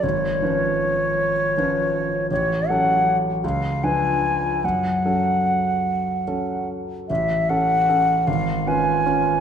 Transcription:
X:1
M:6/8
L:1/8
Q:3/8=51
K:F#m
V:1 name="Flute"
c6 | c f z ^e g2 | f4- f z | [K:A] e f2 ^e g2 |]
V:2 name="Grand piano"
G,,, [^E,CB]3 [E,CB]2 | A,,, [F,CA]2 C,, [^E,DB]2 | F,, [F,CA]3 [F,CA]2 | [K:A] A,,, [CA] [CA] G,,, [C^EB] [CEB] |]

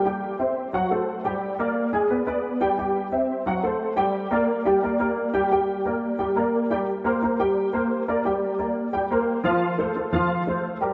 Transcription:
X:1
M:4/4
L:1/8
Q:1/4=176
K:Gm
V:1 name="Grand piano"
[G,Gg]2 [Cc=e]2 [^F,^F^f] [A,Ac]2 [G,Gg]- | [G,Gg] [B,Bd]2 [_A,_A_a] [=B,=Bd] [B,Bd]2 [G,Gg] | [G,Gg]2 [Cc=e]2 [^F,^F^f] [A,Ac]2 [G,Gg]- | [G,Gg] [B,Bd]2 [G,Gg] [B,Bd] [B,Bd]2 [G,Gg] |
[G,Gg]2 [B,Bd]2 [G,Gg] [B,Bd]2 [G,Gg] | z [B,Bc] [B,Bc] [G,Gg]2 [B,Bc]2 [B,Bd] | [G,Gg]2 [B,Bd]2 [G,Gg] [B,Bc]2 [F,Ff]- | [F,Ff] [A,Ac] [A,Ac] [F,Ff]2 [A,Ac]2 [G,GB] |]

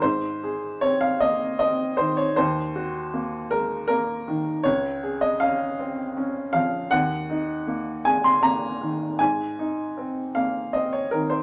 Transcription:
X:1
M:3/4
L:1/16
Q:1/4=79
K:Ebdor
V:1 name="Upright piano"
c4 d f e2 e2 c d | c6 B2 B4 | d3 e f2 z4 f2 | g6 a c' b4 |
a6 f2 e d B c |]
V:2 name="Upright piano"
A,,2 A2 C2 B,2 C2 E,2 | E,,2 G2 B,2 A,2 B,2 E,2 | D,,2 A2 D2 C2 D2 F,2 | E,,2 E2 B,2 A,2 B,2 E,2 |
A,,2 E2 C2 B,2 C2 E,2 |]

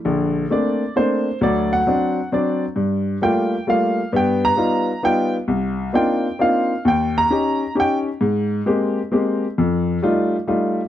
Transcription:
X:1
M:3/4
L:1/8
Q:"Swing" 1/4=132
K:Bb
V:1 name="Upright piano"
z2 d2 c2 | d ^f3 d z | z2 g2 f2 | g ^a3 g z |
z2 g2 f2 | g b3 g z | z6 | z6 |]
V:2 name="Upright piano"
[B,,,D,]2 [A,B,CD] z [A,B,CD] z | [D,,^F,]2 [F,CD] z [F,CD] z | G,,2 [G,A,B,F] z [G,A,B,F] z | [G,,=B,]2 [G,B,^DF] z [G,B,DF] z |
C,,2 [B,CDEF] z [B,CDEF] z | E,,2 [_DEG] z [DEG] z | _A,,2 [_A,B,CG] z [A,B,CG] z | F,,2 [G,A,EF] z [G,A,EF] z |]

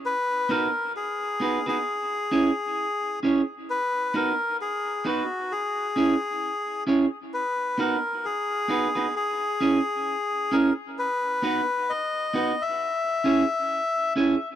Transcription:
X:1
M:4/4
L:1/16
Q:"Swing 16ths" 1/4=66
K:B
V:1 name="Melodica"
B2 A2 G3 G6- G z2 | B2 A2 G2 F2 G6 z2 | B2 A2 G4 G6 A2 | B4 d3 e6- e z2 |]
V:2 name="Clean electric guitar"
z2 [B,DFB] z3 [B,DFB] [B,DFB] z2 [CEGc] z3 [CEGc] z | z2 [B,DFB] z3 [B,DFB] z3 [CEGc] z3 [CEGc] z | z2 [B,DFB] z3 [B,DFB] [B,DFB] z2 [CEGc] z3 [CEGc] z | z2 [B,DFB] z3 [B,DFB] z3 [CEGc] z3 [CEGc] z |]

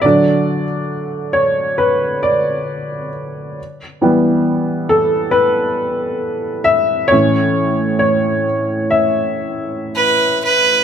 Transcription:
X:1
M:4/4
L:1/8
Q:1/4=67
K:Edor
V:1 name="Fiddle"
z8 | z8 | z6 B B |]
V:2 name="Upright piano"
d3 c B d2 z | z3 A B3 e | c2 c2 e3 z |]
V:3 name="Upright piano" clef=bass
[D,F,D] z6 z | z [E,G,B,]6- [E,G,B,] | [A,,E,C]3 z4 z |]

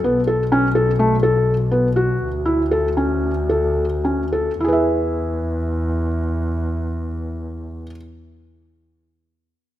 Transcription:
X:1
M:9/8
L:1/8
Q:3/8=70
K:Emix
V:1 name="Felt piano"
B, A C A A, A2 B, F- | F E A C2 A2 C A | [EGBe]8- [EGBe]- | [EGBe]8- [EGBe] |]
V:2 name="Double bass" clef=bass
B,,,8- B,,, | D,,8- D,, | E,,8- E,,- | E,,8- E,, |]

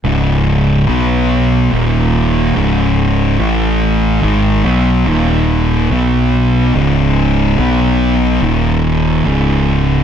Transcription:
X:1
M:4/4
L:1/8
Q:1/4=72
K:C#m
V:1 name="Distorted electric guitar" clef=bass
[C,,G,,C,]2 [B,,F,B,]2 [D,,^A,,D,]2 [C,,G,,C,]2 | [A,,E,A,]2 [G,,D,G,] [B,,F,B,] [D,,^A,,D,]2 [B,,F,B,]2 | [C,,G,,C,]2 [B,,F,B,]2 [D,,^A,,D,]2 [C,,G,,C,]2 |]
V:2 name="Distorted electric guitar" clef=bass
[C,,G,,C,]2 [B,,F,B,]2 [D,,^A,,D,]2 [C,,G,,C,]2 | [A,,E,A,]2 [G,,D,G,] [B,,F,B,] [D,,^A,,D,]2 [B,,F,B,]2 | [C,,G,,C,]2 [B,,F,B,]2 [D,,^A,,D,]2 [C,,G,,C,]2 |]
V:3 name="Fingered electric bass" clef=bass
C,,,2 B,,,2 D,,,2 C,,,2 | A,,,2 G,,, B,,, D,,,2 B,,,2 | C,,,2 B,,,2 D,,,2 C,,,2 |]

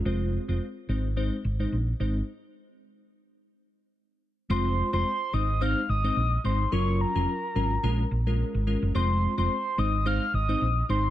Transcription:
X:1
M:4/4
L:1/16
Q:"Swing 16ths" 1/4=108
K:Abmix
V:1 name="Soft synth lead"
z16 | z16 | c'3 c'3 e'2 f'2 e'4 c'2 | d'2 b12 z2 |
c'3 c'3 e'2 f'2 e'4 c'2 |]
V:2 name="Synth keys"
[A,CFc]3 [A,CFc] z2 [A,CEc] z [A,CEc] z2 [A,CEc] z2 [A,CEc] z | z16 | [A,CFc]3 [A,CFc] z2 [A,CEc] z [A,CEc] z2 [A,CEc] z2 [A,CEc] z | [G,DFB]3 [G,DFB] z2 [G,DFB] z [A,DFB] z2 [A,DFB]3 [A,DFB]2 |
[A,CFc]3 [A,CFc] z2 [A,CEc] z [A,CEc] z2 [A,CEc] z2 [A,CEc] z |]
V:3 name="Fingered electric bass" clef=bass
F,,,3 F,,, z2 A,,,4 A,,,2 B,,,2 A,,,2 | z16 | F,,,3 F,,, z2 A,,,4 A,,,2 B,,,2 A,,,2 | G,,,3 F,,, z2 A,,,2 B,,,2 B,,,3 A,,,2 G,,, |
F,,,3 F,,, z2 A,,,4 A,,,2 B,,,2 A,,,2 |]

